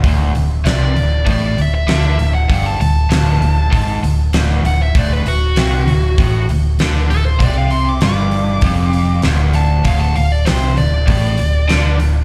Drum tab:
HH |oooooooo|oooooooo|oooooooo|oooooooo|
SD |--o---o-|--o---o-|--o---o-|--o---o-|
BD |o---o---|o---o---|o---o---|o---o---|

HH |oooooooo|
SD |--o---o-|
BD |o---o---|